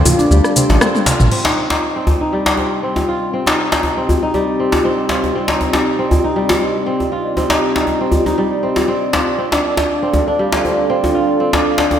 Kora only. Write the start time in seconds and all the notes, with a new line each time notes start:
Already playing: G3 C4 D4 F4
0.19 D4
0.31 G3
0.56 C4
0.81 C4
1.07 F4
1.32 C4
1.45 D#4
1.70 D#4
1.96 C4
2.21 D#4
2.33 G3
2.58 C4
2.83 C4
3.08 F4
3.33 C4
3.47 D#4
3.72 D#4
3.97 C4
4.23 D#4
4.34 G3
4.60 C4
4.85 C4
5.10 F4
5.35 C4
5.49 D#4
5.74 D#4
5.99 C4
6.24 D#4
6.36 G3
6.61 C4
6.86 C4
7.12 F4
7.37 C4
7.50 D#4
7.75 D#4
8.01 C4
8.26 D#4
8.38 G3
8.63 C4
8.88 C4
9.13 F4
9.38 C4
9.52 D4
9.77 D4
10.02 C4
10.27 D4
10.39 G3
10.64 C4
10.90 C4
11.15 F4
11.40 C4
11.53 D4
11.79 D4